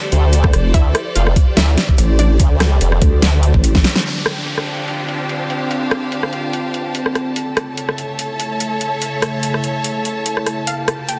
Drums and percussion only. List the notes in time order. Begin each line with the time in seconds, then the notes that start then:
0.12 closed hi-hat
0.33 closed hi-hat
0.44 kick, cross-stick
0.53 cross-stick, closed hi-hat
0.74 kick, closed hi-hat
0.95 cross-stick, closed hi-hat
1.15 closed hi-hat
1.27 cross-stick
1.36 kick, closed hi-hat
1.57 snare, closed hi-hat
1.78 snare, closed hi-hat
1.89 kick
1.98 closed hi-hat
2.19 closed hi-hat
2.40 kick, closed hi-hat
2.60 cross-stick, snare, closed hi-hat
2.81 closed hi-hat
2.92 cross-stick
3.02 kick, closed hi-hat
3.22 snare, closed hi-hat
3.43 closed hi-hat
3.54 kick
3.64 closed hi-hat
3.75 kick, snare
3.84 snare, closed hi-hat
3.96 snare
4.05 closed hi-hat, crash
4.26 cross-stick, closed hi-hat
4.46 closed hi-hat
4.58 cross-stick
4.67 closed hi-hat
4.88 closed hi-hat
5.09 closed hi-hat
5.29 closed hi-hat
5.50 closed hi-hat
5.71 closed hi-hat
5.91 cross-stick, closed hi-hat
6.12 closed hi-hat
6.23 cross-stick
6.33 closed hi-hat
6.53 closed hi-hat
6.74 closed hi-hat
6.95 closed hi-hat
7.06 cross-stick
7.15 cross-stick, closed hi-hat
7.36 closed hi-hat
7.57 cross-stick, closed hi-hat
7.77 closed hi-hat
7.89 cross-stick
7.98 closed hi-hat
8.19 closed hi-hat
8.40 closed hi-hat
8.60 closed hi-hat
8.81 closed hi-hat
9.02 closed hi-hat
9.22 cross-stick, closed hi-hat
9.43 closed hi-hat
9.54 cross-stick
9.64 closed hi-hat
9.84 closed hi-hat
10.05 closed hi-hat
10.26 closed hi-hat
10.37 cross-stick
10.46 cross-stick, closed hi-hat
10.67 closed hi-hat
10.88 cross-stick, closed hi-hat
11.09 closed hi-hat